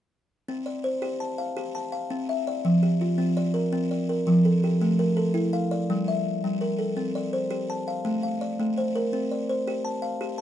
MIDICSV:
0, 0, Header, 1, 2, 480
1, 0, Start_track
1, 0, Tempo, 360360
1, 631, Time_signature, 12, 3, 24, 8
1, 13867, End_track
2, 0, Start_track
2, 0, Title_t, "Kalimba"
2, 0, Program_c, 0, 108
2, 645, Note_on_c, 0, 60, 66
2, 878, Note_on_c, 0, 74, 55
2, 1120, Note_off_c, 0, 60, 0
2, 1120, Note_on_c, 0, 72, 58
2, 1358, Note_on_c, 0, 67, 71
2, 1598, Note_off_c, 0, 74, 0
2, 1601, Note_on_c, 0, 81, 55
2, 1838, Note_off_c, 0, 67, 0
2, 1839, Note_off_c, 0, 72, 0
2, 1842, Note_on_c, 0, 77, 60
2, 2086, Note_on_c, 0, 67, 69
2, 2313, Note_off_c, 0, 81, 0
2, 2329, Note_on_c, 0, 81, 58
2, 2545, Note_off_c, 0, 77, 0
2, 2561, Note_on_c, 0, 77, 57
2, 2563, Note_off_c, 0, 67, 0
2, 2802, Note_on_c, 0, 60, 74
2, 3045, Note_off_c, 0, 81, 0
2, 3052, Note_on_c, 0, 76, 58
2, 3282, Note_off_c, 0, 60, 0
2, 3282, Note_off_c, 0, 77, 0
2, 3294, Note_on_c, 0, 74, 59
2, 3526, Note_on_c, 0, 53, 71
2, 3767, Note_on_c, 0, 67, 58
2, 3768, Note_off_c, 0, 76, 0
2, 3769, Note_off_c, 0, 74, 0
2, 4005, Note_off_c, 0, 53, 0
2, 4011, Note_on_c, 0, 65, 59
2, 4237, Note_on_c, 0, 60, 71
2, 4486, Note_off_c, 0, 67, 0
2, 4486, Note_on_c, 0, 74, 60
2, 4714, Note_on_c, 0, 70, 61
2, 4721, Note_off_c, 0, 60, 0
2, 4728, Note_off_c, 0, 65, 0
2, 4963, Note_on_c, 0, 60, 74
2, 5192, Note_off_c, 0, 74, 0
2, 5208, Note_on_c, 0, 74, 55
2, 5436, Note_off_c, 0, 70, 0
2, 5444, Note_off_c, 0, 60, 0
2, 5452, Note_on_c, 0, 70, 58
2, 5686, Note_on_c, 0, 53, 77
2, 5927, Note_off_c, 0, 74, 0
2, 5930, Note_on_c, 0, 69, 59
2, 6166, Note_off_c, 0, 53, 0
2, 6169, Note_off_c, 0, 70, 0
2, 6178, Note_on_c, 0, 67, 61
2, 6413, Note_on_c, 0, 57, 75
2, 6648, Note_off_c, 0, 69, 0
2, 6648, Note_on_c, 0, 70, 59
2, 6652, Note_off_c, 0, 67, 0
2, 6884, Note_on_c, 0, 69, 61
2, 6890, Note_off_c, 0, 57, 0
2, 7113, Note_on_c, 0, 64, 68
2, 7367, Note_off_c, 0, 70, 0
2, 7368, Note_on_c, 0, 77, 59
2, 7600, Note_off_c, 0, 64, 0
2, 7605, Note_off_c, 0, 69, 0
2, 7610, Note_on_c, 0, 74, 63
2, 7857, Note_on_c, 0, 55, 76
2, 8087, Note_off_c, 0, 77, 0
2, 8088, Note_off_c, 0, 74, 0
2, 8099, Note_on_c, 0, 76, 59
2, 8331, Note_off_c, 0, 55, 0
2, 8578, Note_on_c, 0, 55, 71
2, 8806, Note_on_c, 0, 70, 57
2, 8812, Note_off_c, 0, 76, 0
2, 9040, Note_on_c, 0, 69, 59
2, 9051, Note_off_c, 0, 55, 0
2, 9280, Note_on_c, 0, 60, 68
2, 9522, Note_off_c, 0, 69, 0
2, 9525, Note_off_c, 0, 70, 0
2, 9527, Note_on_c, 0, 74, 60
2, 9762, Note_off_c, 0, 60, 0
2, 9765, Note_on_c, 0, 72, 57
2, 9997, Note_on_c, 0, 67, 70
2, 10244, Note_off_c, 0, 74, 0
2, 10252, Note_on_c, 0, 81, 58
2, 10479, Note_off_c, 0, 67, 0
2, 10483, Note_off_c, 0, 72, 0
2, 10492, Note_on_c, 0, 77, 61
2, 10721, Note_on_c, 0, 57, 73
2, 10949, Note_off_c, 0, 77, 0
2, 10965, Note_on_c, 0, 77, 58
2, 10966, Note_off_c, 0, 81, 0
2, 11200, Note_off_c, 0, 57, 0
2, 11205, Note_on_c, 0, 74, 57
2, 11449, Note_on_c, 0, 57, 72
2, 11682, Note_off_c, 0, 77, 0
2, 11690, Note_on_c, 0, 72, 56
2, 11921, Note_off_c, 0, 74, 0
2, 11924, Note_off_c, 0, 57, 0
2, 11928, Note_on_c, 0, 70, 62
2, 12164, Note_on_c, 0, 60, 65
2, 12402, Note_off_c, 0, 70, 0
2, 12403, Note_off_c, 0, 72, 0
2, 12408, Note_on_c, 0, 74, 56
2, 12640, Note_off_c, 0, 60, 0
2, 12646, Note_on_c, 0, 72, 58
2, 12887, Note_on_c, 0, 67, 67
2, 13114, Note_on_c, 0, 81, 59
2, 13120, Note_off_c, 0, 74, 0
2, 13349, Note_on_c, 0, 77, 61
2, 13359, Note_off_c, 0, 72, 0
2, 13360, Note_off_c, 0, 67, 0
2, 13597, Note_on_c, 0, 67, 76
2, 13812, Note_off_c, 0, 81, 0
2, 13867, Note_off_c, 0, 67, 0
2, 13867, Note_off_c, 0, 77, 0
2, 13867, End_track
0, 0, End_of_file